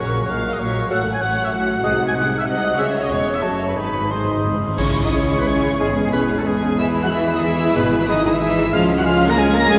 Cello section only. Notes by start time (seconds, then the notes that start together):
0.00 A#2
0.29 A#2
0.60 A#2
0.90 A2
1.22 A2
1.53 A2
1.84 C3
2.15 C3
2.47 C3
2.79 C#3
3.11 E2
3.43 F#2
3.76 G#2
4.78 C#3
5.04 D#3
5.12 C#3
5.38 B2
5.46 C#3
5.80 G#2
6.04 G#2
6.12 B2
6.38 A2
6.46 G#2
6.79 E3
7.03 F#3
7.12 E3
7.35 D#3
7.44 E3
7.76 B2
8.01 B2
8.08 D#3
8.25 D#3
8.33 E3
8.41 E3
8.73 F3
8.98 F#3
9.06 F3
9.30 A#3
9.38 G#3
9.55 A#3
9.72 G#3